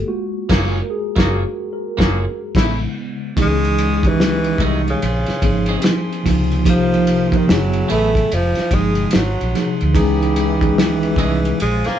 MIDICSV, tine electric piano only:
0, 0, Header, 1, 2, 480
1, 0, Start_track
1, 0, Tempo, 821918
1, 48, Time_signature, 4, 2, 24, 8
1, 7003, End_track
2, 0, Start_track
2, 0, Title_t, "Tine electric piano"
2, 0, Program_c, 0, 4
2, 0, Control_c, 0, 64, 127
2, 0, Note_on_c, 0, 59, 61
2, 0, Note_on_c, 0, 66, 53
2, 0, Note_on_c, 0, 69, 85
2, 42, Note_on_c, 0, 65, 57
2, 46, Note_on_c, 0, 56, 50
2, 48, Note_off_c, 0, 66, 0
2, 48, Note_on_c, 0, 66, 88
2, 50, Note_on_c, 0, 58, 61
2, 56, Control_c, 0, 64, 0
2, 59, Note_off_c, 0, 59, 0
2, 61, Note_off_c, 0, 69, 0
2, 153, Control_c, 0, 64, 127
2, 287, Note_on_c, 0, 70, 96
2, 295, Note_off_c, 0, 66, 0
2, 526, Note_on_c, 0, 68, 90
2, 535, Note_off_c, 0, 70, 0
2, 764, Note_on_c, 0, 66, 76
2, 774, Note_off_c, 0, 68, 0
2, 989, Note_off_c, 0, 66, 0
2, 1009, Note_on_c, 0, 70, 74
2, 1462, Note_off_c, 0, 65, 0
2, 1464, Note_off_c, 0, 56, 0
2, 1466, Note_off_c, 0, 58, 0
2, 1466, Note_off_c, 0, 70, 0
2, 1487, Note_on_c, 0, 49, 56
2, 1490, Note_on_c, 0, 56, 50
2, 1495, Control_c, 0, 64, 0
2, 1495, Note_on_c, 0, 59, 58
2, 1594, Control_c, 0, 64, 127
2, 1944, Note_off_c, 0, 49, 0
2, 1946, Note_off_c, 0, 56, 0
2, 1948, Note_off_c, 0, 59, 0
2, 1964, Note_on_c, 0, 52, 98
2, 1968, Note_on_c, 0, 56, 85
2, 1973, Note_on_c, 0, 61, 87
2, 1975, Note_on_c, 0, 63, 85
2, 1976, Control_c, 0, 64, 0
2, 1978, Note_on_c, 0, 68, 107
2, 2083, Control_c, 0, 64, 127
2, 2278, Note_off_c, 0, 52, 0
2, 2280, Note_off_c, 0, 56, 0
2, 2283, Note_off_c, 0, 61, 0
2, 2284, Note_off_c, 0, 63, 0
2, 2285, Note_off_c, 0, 68, 0
2, 2354, Note_on_c, 0, 51, 63
2, 2359, Note_on_c, 0, 56, 71
2, 2360, Note_on_c, 0, 61, 72
2, 2364, Note_on_c, 0, 63, 73
2, 2370, Note_on_c, 0, 67, 90
2, 2385, Note_off_c, 0, 51, 0
2, 2392, Note_on_c, 0, 52, 82
2, 2928, Note_off_c, 0, 56, 0
2, 2929, Note_off_c, 0, 61, 0
2, 2931, Note_off_c, 0, 63, 0
2, 2933, Note_off_c, 0, 67, 0
2, 2934, Control_c, 0, 64, 0
2, 2945, Note_off_c, 0, 52, 0
2, 3025, Control_c, 0, 64, 127
2, 3165, Note_on_c, 0, 60, 72
2, 3168, Note_on_c, 0, 53, 66
2, 3170, Note_on_c, 0, 58, 69
2, 3176, Note_on_c, 0, 63, 68
2, 3179, Note_on_c, 0, 68, 75
2, 3585, Note_off_c, 0, 60, 0
2, 3586, Note_off_c, 0, 53, 0
2, 3587, Note_off_c, 0, 58, 0
2, 3590, Note_off_c, 0, 63, 0
2, 3592, Note_off_c, 0, 68, 0
2, 3640, Note_on_c, 0, 48, 87
2, 3644, Note_on_c, 0, 53, 74
2, 3648, Note_on_c, 0, 58, 80
2, 3651, Note_on_c, 0, 63, 74
2, 3653, Note_on_c, 0, 65, 96
2, 3853, Note_off_c, 0, 48, 0
2, 3855, Note_off_c, 0, 53, 0
2, 3857, Note_off_c, 0, 58, 0
2, 3859, Note_off_c, 0, 63, 0
2, 3860, Note_off_c, 0, 65, 0
2, 3878, Note_on_c, 0, 48, 99
2, 3882, Note_on_c, 0, 53, 92
2, 3885, Note_on_c, 0, 58, 93
2, 3887, Note_on_c, 0, 63, 86
2, 3891, Note_on_c, 0, 67, 113
2, 3895, Control_c, 0, 64, 0
2, 4008, Control_c, 0, 64, 127
2, 4195, Note_off_c, 0, 48, 0
2, 4197, Note_off_c, 0, 53, 0
2, 4199, Note_off_c, 0, 58, 0
2, 4200, Note_off_c, 0, 63, 0
2, 4202, Note_off_c, 0, 67, 0
2, 4271, Note_on_c, 0, 48, 81
2, 4273, Note_on_c, 0, 53, 74
2, 4278, Note_on_c, 0, 58, 73
2, 4281, Note_on_c, 0, 63, 75
2, 4284, Note_on_c, 0, 70, 85
2, 4360, Note_on_c, 0, 49, 89
2, 4363, Note_on_c, 0, 54, 77
2, 4364, Note_off_c, 0, 48, 0
2, 4365, Note_off_c, 0, 53, 0
2, 4366, Note_on_c, 0, 59, 78
2, 4368, Note_off_c, 0, 58, 0
2, 4369, Note_off_c, 0, 63, 0
2, 4370, Note_off_c, 0, 70, 0
2, 4372, Note_on_c, 0, 64, 77
2, 4375, Control_c, 0, 64, 0
2, 4375, Note_on_c, 0, 68, 92
2, 4463, Control_c, 0, 64, 127
2, 4782, Note_off_c, 0, 49, 0
2, 4784, Note_off_c, 0, 54, 0
2, 4785, Note_off_c, 0, 59, 0
2, 4788, Note_off_c, 0, 64, 0
2, 4790, Note_off_c, 0, 68, 0
2, 4855, Control_c, 0, 64, 0
2, 4949, Control_c, 0, 64, 127
2, 5084, Note_on_c, 0, 48, 71
2, 5088, Note_on_c, 0, 53, 66
2, 5092, Note_on_c, 0, 58, 69
2, 5094, Note_on_c, 0, 63, 71
2, 5097, Note_on_c, 0, 68, 81
2, 5326, Note_off_c, 0, 48, 0
2, 5328, Note_off_c, 0, 53, 0
2, 5330, Note_off_c, 0, 58, 0
2, 5331, Note_off_c, 0, 63, 0
2, 5333, Note_off_c, 0, 68, 0
2, 5336, Control_c, 0, 64, 0
2, 5420, Control_c, 0, 64, 127
2, 5566, Note_on_c, 0, 48, 73
2, 5571, Note_on_c, 0, 53, 69
2, 5574, Note_on_c, 0, 58, 67
2, 5577, Note_on_c, 0, 63, 72
2, 5580, Note_on_c, 0, 68, 75
2, 5776, Note_off_c, 0, 48, 0
2, 5779, Note_off_c, 0, 53, 0
2, 5780, Note_off_c, 0, 58, 0
2, 5782, Note_off_c, 0, 63, 0
2, 5783, Note_off_c, 0, 68, 0
2, 5800, Note_on_c, 0, 52, 120
2, 5805, Note_on_c, 0, 56, 117
2, 5808, Note_on_c, 0, 61, 110
2, 5812, Note_on_c, 0, 63, 113
2, 5816, Note_on_c, 0, 68, 127
2, 5817, Control_c, 0, 64, 0
2, 5902, Control_c, 0, 64, 127
2, 6116, Note_off_c, 0, 52, 0
2, 6119, Note_off_c, 0, 56, 0
2, 6120, Note_off_c, 0, 61, 0
2, 6123, Note_off_c, 0, 63, 0
2, 6124, Note_off_c, 0, 68, 0
2, 6192, Note_on_c, 0, 51, 62
2, 6194, Note_on_c, 0, 56, 70
2, 6200, Note_on_c, 0, 61, 78
2, 6201, Note_on_c, 0, 63, 77
2, 6207, Note_on_c, 0, 68, 87
2, 6224, Note_off_c, 0, 51, 0
2, 6230, Note_on_c, 0, 52, 79
2, 6765, Note_off_c, 0, 56, 0
2, 6768, Note_off_c, 0, 61, 0
2, 6769, Note_off_c, 0, 63, 0
2, 6772, Note_off_c, 0, 68, 0
2, 6776, Control_c, 0, 64, 0
2, 6784, Note_off_c, 0, 52, 0
2, 6870, Control_c, 0, 64, 127
2, 7003, End_track
0, 0, End_of_file